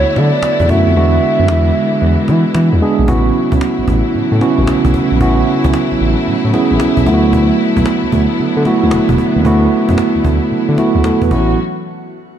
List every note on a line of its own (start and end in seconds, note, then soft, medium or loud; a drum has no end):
0.00 3.04 D3 medium
0.00 0.92 F#3 medium
0.00 0.69 A3 medium
0.00 0.92 A3 medium
0.00 0.70 B3 medium
0.00 3.04 B3 medium
0.00 0.70 E4 medium
0.00 3.04 E4 medium
0.00 0.70 F#4 medium
0.00 0.19 C#5 loud
0.16 0.31 D3 loud
0.16 0.71 D5 loud
0.16 cajon slap medium
0.34 cajon slap soft
0.43 cajon slap loud
0.60 0.68 E2 loud
0.60 cajon bass medium
0.69 0.84 F#2 medium
0.69 0.90 A3 medium
0.69 0.90 B3 medium
0.69 0.90 E4 medium
0.69 0.91 F#4 medium
0.69 2.55 E5 loud
0.69 cajon bass loud
0.87 0.94 F2 medium
0.87 cajon slap soft
0.96 1.18 E2 loud
0.96 3.07 E3 medium
0.96 1.71 G#3 medium
0.96 3.07 G#3 medium
0.96 1.72 B3 medium
0.96 1.72 D4 medium
0.96 1.72 F#4 medium
1.22 cajon slap soft
1.40 1.47 F#2 medium
1.40 cajon slap soft
1.48 1.71 E2 medium
1.48 cajon slap loud
1.75 cajon slap soft
1.92 cajon slap soft
2.02 2.16 E2 loud
2.02 cajon slap soft
2.28 2.43 E3 loud
2.28 cajon slap medium
2.46 cajon slap soft
2.54 2.70 E3 loud
2.54 cajon slap loud
2.73 2.80 E2 medium
2.81 3.02 G#3 medium
2.81 3.02 B3 medium
2.81 3.03 D4 medium
2.81 3.03 G#4 loud
2.99 3.07 A#1 medium
2.99 cajon slap soft
3.08 3.30 A1 loud
3.08 7.03 C#3 medium
3.08 7.03 E3 medium
3.08 11.27 F#3 medium
3.08 11.27 A3 medium
3.08 3.84 B3 loud
3.08 3.84 C#4 medium
3.08 3.84 E4 medium
3.08 11.27 E4 medium
3.08 3.84 F#4 loud
3.08 cajon bass loud
3.34 cajon slap soft
3.52 3.60 C#2 loud
3.52 cajon bass loud
3.61 cajon slap loud
3.79 3.82 A1 soft
3.88 4.02 A1 loud
3.88 cajon bass loud
4.06 cajon slap soft
4.14 4.21 A2 medium
4.14 cajon slap soft
4.32 4.39 A2 loud
4.41 4.97 B3 medium
4.41 4.97 C#4 medium
4.41 4.97 E4 medium
4.41 4.98 F#4 loud
4.41 cajon slap medium
4.58 4.66 A1 medium
4.58 cajon slap soft
4.67 4.74 B1 medium
4.67 cajon slap loud
4.85 4.93 B1 loud
4.85 cajon bass medium
4.94 cajon bass medium
5.11 5.19 A#1 medium
5.11 cajon slap soft
5.21 5.43 A1 loud
5.21 5.96 B3 loud
5.21 5.96 C#4 medium
5.21 5.97 E4 medium
5.21 5.97 F#4 loud
5.21 cajon bass loud
5.47 cajon slap soft
5.64 5.72 C#2 medium
5.64 cajon bass loud
5.74 cajon slap loud
5.92 5.95 A1 medium
6.01 6.15 A1 loud
6.18 cajon slap soft
6.27 6.34 A2 medium
6.27 cajon slap soft
6.45 6.52 A2 medium
6.53 7.05 B3 medium
6.53 7.07 C#4 medium
6.53 7.06 E4 medium
6.53 7.07 G#4 loud
6.53 cajon slap medium
6.71 6.79 A1 loud
6.71 cajon slap soft
6.80 6.87 B1 medium
6.80 cajon slap loud
6.97 7.05 B1 medium
6.97 cajon bass medium
7.06 7.51 D2 loud
7.06 11.27 D3 medium
7.06 7.93 A3 loud
7.06 11.27 B3 medium
7.06 7.93 B3 medium
7.06 7.93 E4 medium
7.06 7.15 F4 medium
7.06 cajon bass loud
7.14 7.97 F#4 loud
7.24 cajon slap soft
7.33 cajon bass loud
7.59 cajon slap soft
7.77 7.85 B1 loud
7.77 cajon bass loud
7.86 cajon slap loud
8.04 8.07 D2 soft
8.12 8.27 D2 loud
8.12 cajon bass loud
8.30 cajon slap soft
8.39 8.46 D3 medium
8.39 cajon slap soft
8.57 8.64 D3 medium
8.65 9.22 A3 medium
8.65 9.22 B3 medium
8.65 9.22 E4 medium
8.65 9.22 F#4 loud
8.65 cajon slap medium
8.82 8.91 D2 medium
8.82 cajon slap soft
8.91 8.99 E1 medium
8.91 cajon slap loud
9.09 9.17 E1 loud
9.09 cajon bass medium
9.18 cajon bass medium
9.36 9.44 D#2 medium
9.45 9.67 D2 loud
9.45 10.21 A3 loud
9.45 10.21 B3 medium
9.45 10.21 E4 medium
9.45 10.22 F#4 loud
9.45 cajon bass loud
9.71 cajon slap soft
9.89 9.97 F#2 medium
9.89 cajon bass loud
9.98 cajon slap loud
10.16 10.19 D2 medium
10.25 10.39 D2 medium
10.25 cajon bass loud
10.42 cajon slap soft
10.51 10.58 D3 medium
10.51 cajon slap soft
10.69 10.77 D3 loud
10.78 11.31 A3 medium
10.78 11.30 B3 medium
10.78 11.04 E4 medium
10.78 11.05 F#4 medium
10.78 cajon slap medium
10.95 11.03 D2 medium
10.95 cajon slap soft
11.04 11.11 E2 medium
11.04 11.21 E4 medium
11.04 11.21 A4 medium
11.04 cajon slap loud
11.22 11.30 E2 medium
11.22 11.30 F#4 medium
11.22 11.31 B4 medium
11.22 cajon bass medium
11.31 11.56 A1 loud
11.31 11.56 E3 medium
11.31 11.56 F#3 medium
11.31 11.56 A3 medium
11.31 11.56 B3 medium
11.31 11.56 C#4 medium
11.31 11.56 E4 medium
11.31 11.56 F#4 medium
11.31 cajon bass loud